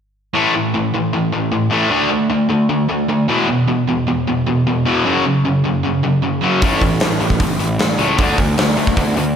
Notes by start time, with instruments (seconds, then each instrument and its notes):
0.34 distorted electric guitar A2 E3 A3
0.54 distorted electric guitar A2 E3
0.74 distorted electric guitar A2 E3
0.94 distorted electric guitar A2 E3
1.13 distorted electric guitar A2 E3
1.33 distorted electric guitar A2 E3
1.52 distorted electric guitar A2 E3
1.70 distorted electric guitar A2 E3 A3
1.90 distorted electric guitar D3 A3 D4
2.10 distorted electric guitar D3 A3
2.30 distorted electric guitar D3 A3
2.49 distorted electric guitar D3 A3
2.69 distorted electric guitar D3 A3
2.89 distorted electric guitar D3 A3
3.09 distorted electric guitar D3 A3
3.29 distorted electric guitar E2 B2 E3
3.48 distorted electric guitar E2 B2
3.68 distorted electric guitar E2 B2
3.89 distorted electric guitar E2 B2
4.08 distorted electric guitar E2 B2
4.28 distorted electric guitar E2 B2
4.47 distorted electric guitar E2 B2
4.67 distorted electric guitar E2 B2
4.86 distorted electric guitar E2 B2 E3
5.05 distorted electric guitar F#2 C#3 F#3
5.26 distorted electric guitar F#2 C#3
5.45 distorted electric guitar F#2 C#3
5.65 distorted electric guitar F#2 C#3
5.84 distorted electric guitar F#2 C#3
6.04 distorted electric guitar F#2 C#3
6.23 distorted electric guitar F#2 C#3
6.43 distorted electric guitar F#2 C#3 F#3
6.62 picked electric bass A1, distorted electric guitar A2 E3 A3, kick, open hi-hat
6.81 distorted electric guitar A2 E3, kick, open hi-hat
7.00 picked electric bass A1, distorted electric guitar A2 E3, snare, open hi-hat
7.20 picked electric bass A1, distorted electric guitar A2 E3, open hi-hat
7.30 kick
7.40 picked electric bass F#1, distorted electric guitar A2 E3, kick, open hi-hat
7.60 picked electric bass A1, distorted electric guitar A2 E3, open hi-hat
7.79 picked electric bass A1, distorted electric guitar A2 E3, snare, open hi-hat
7.98 picked electric bass C#2, distorted electric guitar A2 E3 A3, open hi-hat
8.18 picked electric bass D2, distorted electric guitar D3 A3 D4, kick, open hi-hat
8.37 picked electric bass D2, distorted electric guitar D3 A3, kick, open hi-hat
8.58 picked electric bass D2, distorted electric guitar D3 A3, snare, open hi-hat
8.77 picked electric bass D2, distorted electric guitar D3 A3, open hi-hat
8.87 kick
8.97 picked electric bass D2, distorted electric guitar D3 A3, kick, open hi-hat
9.16 picked electric bass D2, distorted electric guitar D3 A3, open hi-hat